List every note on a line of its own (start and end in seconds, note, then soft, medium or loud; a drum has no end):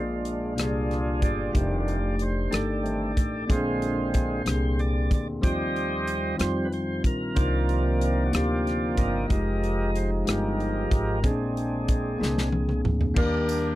0.00 0.58 A#1 medium
0.00 0.53 A#2 soft
0.00 1.53 F3 medium
0.00 0.54 G#3 soft
0.00 1.53 G#3 medium
0.00 0.47 A#3 medium
0.00 1.53 A#3 medium
0.00 0.51 D4 medium
0.00 0.54 D4 soft
0.00 0.48 F4 medium
0.00 0.60 F4 medium
0.00 0.48 G#4 medium
0.00 3.44 D5 medium
0.25 closed hi-hat medium
0.56 1.19 C2 medium
0.56 1.44 A#3 medium
0.56 1.45 D4 soft
0.56 1.52 D4 soft
0.56 1.45 F4 soft
0.56 0.65 G4 soft
0.56 1.52 G#4 soft
0.56 cross-stick medium
0.56 closed hi-hat medium
0.61 1.21 F4 medium
0.61 1.49 G#4 medium
0.91 cross-stick soft
0.91 closed hi-hat soft
1.22 1.52 G1 medium
1.22 2.16 F4 medium
1.22 2.16 G4 medium
1.22 2.24 D5 medium
1.22 kick medium
1.22 closed hi-hat soft
1.52 2.48 F1 medium
1.52 3.47 D#3 medium
1.52 1.98 D#3 soft
1.52 3.46 G3 medium
1.52 2.41 A3 medium
1.52 3.46 A3 medium
1.52 2.41 D4 medium
1.52 2.42 D#4 medium
1.52 2.42 G4 medium
1.52 kick medium
1.52 closed hi-hat medium
1.57 1.99 G3 soft
1.57 1.99 A3 soft
1.57 1.99 C4 soft
1.88 closed hi-hat soft
2.19 2.54 C5 medium
2.19 closed hi-hat medium
2.50 3.13 G1 medium
2.50 3.38 A3 medium
2.50 3.39 D4 soft
2.50 3.39 D#4 soft
2.50 3.45 G4 medium
2.50 3.45 A4 medium
2.50 3.40 A4 medium
2.50 3.53 D5 medium
2.50 closed hi-hat medium
2.54 cross-stick medium
2.83 3.13 D#3 soft
2.83 3.13 G3 soft
2.83 3.13 A3 soft
2.83 3.13 C4 soft
2.83 closed hi-hat soft
3.17 3.47 A1 medium
3.17 kick medium
3.17 closed hi-hat medium
3.48 4.42 A#1 medium
3.48 4.42 A#2 soft
3.48 4.42 D3 soft
3.48 5.42 D3 medium
3.48 4.42 G#3 soft
3.48 5.42 G#3 medium
3.48 4.36 A#3 medium
3.48 5.41 A#3 medium
3.48 4.36 C4 medium
3.48 4.42 C4 soft
3.48 7.33 C4 medium
3.48 4.36 D4 medium
3.48 4.43 F4 medium
3.48 4.43 G#4 medium
3.48 4.37 G#4 medium
3.48 kick medium
3.48 closed hi-hat medium
3.52 4.48 C5 medium
3.82 closed hi-hat soft
4.14 kick medium
4.14 closed hi-hat medium
4.45 5.07 C2 medium
4.45 5.33 A#3 soft
4.45 5.33 C4 soft
4.45 5.34 D4 soft
4.45 4.53 G4 soft
4.45 4.81 C5 medium
4.45 cross-stick medium
4.45 closed hi-hat medium
4.54 5.37 G#4 medium
4.79 5.12 D5 medium
4.79 closed hi-hat soft
5.11 5.41 D2 medium
5.11 5.28 D5 medium
5.11 kick medium
5.11 closed hi-hat medium
5.41 6.36 D#2 medium
5.41 9.27 C3 medium
5.41 6.36 D#3 soft
5.41 6.36 F3 soft
5.41 11.19 F3 medium
5.41 6.29 G3 medium
5.41 6.36 G3 soft
5.41 7.35 G3 medium
5.41 6.30 C4 medium
5.41 6.37 C4 medium
5.41 6.30 D#4 medium
5.41 6.31 F4 medium
5.41 6.36 G4 medium
5.41 6.36 C5 medium
5.41 kick medium
5.41 closed hi-hat medium
5.46 6.37 D#5 medium
5.76 closed hi-hat soft
6.07 closed hi-hat medium
6.38 7.01 F2 medium
6.38 6.68 F3 soft
6.38 7.26 G3 medium
6.38 6.69 G3 soft
6.38 7.26 C4 soft
6.38 6.69 C4 soft
6.38 7.27 D#4 soft
6.38 7.27 F4 medium
6.38 cross-stick medium
6.38 closed hi-hat medium
6.42 6.67 C5 medium
6.65 6.72 B4 medium
6.72 7.03 C5 medium
6.72 closed hi-hat soft
7.04 7.34 A#1 medium
7.04 7.38 A#4 medium
7.04 kick medium
7.04 closed hi-hat soft
7.35 8.30 C2 medium
7.35 9.25 C3 soft
7.35 8.29 C3 soft
7.35 8.29 D#3 medium
7.35 9.26 F3 soft
7.35 9.28 A#3 medium
7.35 8.23 A#3 medium
7.35 8.33 A#3 soft
7.35 9.27 C4 medium
7.35 8.29 C4 medium
7.35 8.23 D4 medium
7.35 8.24 D#4 medium
7.35 8.24 F4 medium
7.35 9.26 D5 soft
7.35 kick medium
7.35 closed hi-hat medium
7.39 8.24 A#4 medium
7.69 closed hi-hat soft
8.01 closed hi-hat medium
8.26 8.33 F#4 medium
8.31 8.94 D2 medium
8.31 9.20 A#3 medium
8.31 9.27 A#3 soft
8.31 9.20 D4 soft
8.31 9.21 D#4 soft
8.31 9.27 F4 soft
8.31 9.21 G4 medium
8.31 cross-stick medium
8.31 closed hi-hat medium
8.36 8.96 G4 medium
8.67 cross-stick soft
8.67 closed hi-hat soft
8.97 9.27 G1 medium
8.97 9.91 G4 medium
8.97 9.91 A#4 medium
8.97 9.99 D#5 medium
8.97 kick medium
8.97 closed hi-hat medium
9.28 10.23 F1 medium
9.28 11.19 F3 soft
9.28 10.16 G#3 medium
9.28 11.20 G#3 soft
9.28 13.13 G#3 medium
9.28 10.17 D#4 medium
9.28 11.22 D#4 medium
9.28 10.28 D#4 soft
9.28 10.17 F4 medium
9.28 11.22 G4 medium
9.28 10.18 G4 medium
9.28 kick medium
9.28 closed hi-hat medium
9.64 closed hi-hat soft
9.96 10.11 C5 medium
9.96 closed hi-hat medium
10.25 10.88 G1 medium
10.25 11.13 G#3 medium
10.25 11.13 D#4 medium
10.25 11.21 D#4 medium
10.25 11.14 F4 soft
10.25 11.14 G4 medium
10.25 11.20 G4 medium
10.25 cross-stick medium
10.25 closed hi-hat medium
10.29 11.28 A#4 medium
10.60 closed hi-hat soft
10.91 11.21 G#1 medium
10.91 kick medium
10.91 closed hi-hat soft
11.22 12.16 A#1 medium
11.22 12.16 A#2 soft
11.22 13.14 D3 medium
11.22 12.19 G#3 soft
11.22 12.10 A#3 medium
11.22 13.14 A#3 medium
11.22 12.10 C4 medium
11.22 12.18 C4 soft
11.22 13.15 C4 medium
11.22 11.31 C#4 soft
11.22 12.20 D4 soft
11.22 12.11 G#4 medium
11.22 12.81 G#4 medium
11.22 kick medium
11.22 closed hi-hat medium
11.31 12.14 D4 medium
11.57 closed hi-hat soft
11.88 kick medium
11.88 closed hi-hat medium
12.19 12.81 C2 medium
12.19 12.49 G#3 soft
12.19 13.06 A#3 medium
12.19 12.49 C4 soft
12.19 13.06 C4 medium
12.19 13.07 D4 medium
12.19 12.50 D4 soft
12.19 13.07 G#4 medium
12.23 snare soft
12.38 snare soft
12.52 high tom medium
12.69 mid tom medium
12.85 13.14 D2 medium
12.85 mid tom medium
13.01 floor tom medium
13.14 13.75 D#2 loud
13.14 13.75 D#3 medium
13.14 13.75 G3 medium
13.14 13.75 A#3 medium
13.14 13.75 D4 medium
13.14 13.23 F4 medium
13.14 13.75 G4 medium
13.14 13.75 A#4 medium
13.14 kick loud
13.14 crash medium
13.18 13.75 D4 medium
13.18 13.75 G4 medium
13.24 13.75 G4 medium
13.49 ride soft
13.49 tambourine medium